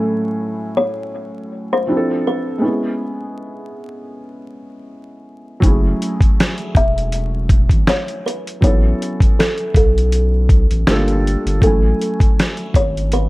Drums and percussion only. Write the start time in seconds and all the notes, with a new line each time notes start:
5.62 kick, closed hi-hat
6.02 closed hi-hat
6.21 kick, closed hi-hat
6.40 snare, closed hi-hat
6.58 closed hi-hat
6.75 kick, closed hi-hat
6.98 closed hi-hat
7.12 closed hi-hat
7.49 kick, closed hi-hat
7.70 kick, closed hi-hat
7.87 snare, closed hi-hat
8.08 closed hi-hat
8.28 closed hi-hat
8.47 closed hi-hat
8.62 kick, closed hi-hat
9.02 closed hi-hat
9.20 kick, closed hi-hat
9.40 snare, closed hi-hat
9.58 closed hi-hat
9.75 kick, closed hi-hat
9.98 closed hi-hat
10.12 closed hi-hat
10.49 kick, closed hi-hat
10.71 closed hi-hat
10.87 snare, closed hi-hat
11.08 closed hi-hat
11.27 closed hi-hat
11.47 closed hi-hat
11.62 kick, closed hi-hat
12.01 closed hi-hat
12.20 kick, closed hi-hat
12.39 snare, closed hi-hat
12.57 closed hi-hat
12.74 kick, closed hi-hat
12.97 closed hi-hat
13.12 closed hi-hat